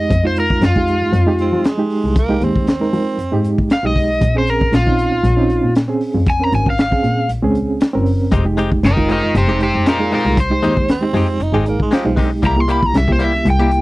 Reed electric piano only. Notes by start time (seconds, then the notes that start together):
0.24 G#3 D#4 F4
0.75 G#3 D#4 G4
1.26 G#3 D#4 G4
1.78 G#3 D#4 G4
2.29 G#3 D#4 G4
2.80 G#3 D#4 A#4
3.32 G#3 D#4 G4
3.83 G#3 D#4 G4
4.35 C4 C#4 G#4
4.85 C4 C#4 D#4
5.37 C4 C#4 D#4
5.88 C4 C#4 G#4
6.40 C4 C#4 A#4
6.91 C4 C#4 G#4
7.43 C4 C#4 G#4
7.93 C4 C#4 A#4
8.45 G#3 D#4 G4
8.96 G#3 D#4 F4
9.48 G#3 D#4 G4
9.99 G#3 D#4 G#4
10.50 G#3 D#4 G4
11.01 G#3 D#4 G4
11.53 G#3 D#4 G#4
12.04 G#3 D#4 G4
12.56 A#3 E4 G4
13.07 A#3 E4 G4
13.59 A#3 E4 G4